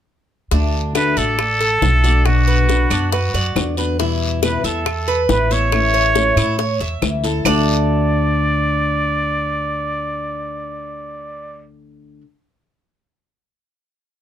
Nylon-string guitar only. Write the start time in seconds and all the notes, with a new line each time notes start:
0.51 D3 A3 D4 F#4
0.94 D3 A3 D4 F#4
1.17 A3 D4 F#4
1.39 muted nylon-string guitar stroke
1.82 D3 A3 D4 F#4
2.04 A3 D4 F#4
2.26 B2 D3 B3 D4 F#4
2.68 B2 D3 B3 D4 F#4
2.91 B3 D4 F#4
3.12 muted nylon-string guitar stroke
3.56 D3 B3 D4 F#4
3.77 D3 B3 D4 F#4
3.99 B2 E3 G3 B3 E4
4.42 B2 E3 G3 B3 E4
4.64 G3 B3 E4
4.86 muted nylon-string guitar stroke
5.29 E3 G3 B3 E4
5.50 E3 G3 B3 E4
5.72 E3 A3 C#4 E4
6.15 E3 A3 C#4 E4
6.37 A3 C#4 E4
6.58 muted nylon-string guitar stroke
7.01 E3 A3 C#4 E4
7.23 A3 C#4 E4
7.44 D3 A3 D4 F#4